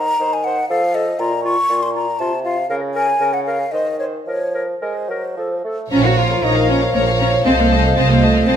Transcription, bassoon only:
0.00 0.14 D#3 medium
0.19 0.64 D#3 medium
0.70 1.14 F3 medium
1.19 1.56 A#2 medium
1.69 2.14 A#2 medium
2.20 2.64 C3 medium
2.70 3.14 C#3 medium
3.20 3.66 C#3 medium
3.73 4.20 D#3 medium
4.27 4.75 F3 medium
4.82 5.11 G#3 medium
5.09 5.36 F#3 soft
5.37 5.64 F3 medium
5.64 5.91 A3 soft
5.91 8.56 F3 medium

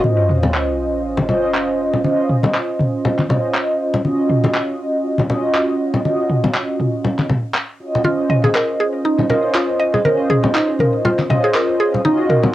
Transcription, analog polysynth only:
0.05 1.27 C#4 medium
0.05 1.27 F4 medium
0.05 1.27 C5 medium
0.05 1.27 D#5 loud
1.29 2.02 C#4 medium
1.29 2.02 F4 medium
1.29 2.02 C5 medium
1.29 2.02 D#5 loud
2.04 3.27 C#4 medium
2.04 3.27 F4 medium
2.04 3.27 C5 medium
2.04 3.27 D#5 medium
3.30 4.02 C#4 medium
3.30 4.02 F4 medium
3.30 4.02 C5 medium
3.30 4.02 D#5 loud
4.05 5.27 C#4 medium
4.05 5.27 F4 medium
4.05 5.27 F#4 medium
4.05 5.27 D#5 loud
5.30 6.02 C#4 medium
5.30 6.02 F4 medium
5.30 6.02 F#4 medium
5.30 6.02 D#5 loud
6.05 7.27 C#4 medium
6.05 7.27 F4 medium
6.05 7.27 F#4 medium
6.05 7.27 D#5 medium
7.80 8.02 C#4 medium
7.80 8.02 F4 medium
7.80 8.02 F#4 medium
7.80 8.02 D#5 medium
8.05 9.27 C#4 medium
8.05 9.27 F4 medium
8.05 9.27 C5 medium
8.05 9.27 D#5 loud
9.30 10.02 C#4 medium
9.30 10.02 F4 medium
9.30 10.02 C5 medium
9.30 10.02 D#5 loud
10.05 11.27 C#4 medium
10.05 11.27 F4 medium
10.05 11.27 C5 medium
10.05 11.27 D#5 loud
11.30 12.02 C#4 medium
11.30 12.02 F4 medium
11.30 12.02 C5 medium
11.30 12.02 D#5 loud
12.05 12.55 C#4 medium
12.05 12.55 F4 medium
12.05 12.55 F#4 medium
12.05 12.55 D#5 loud

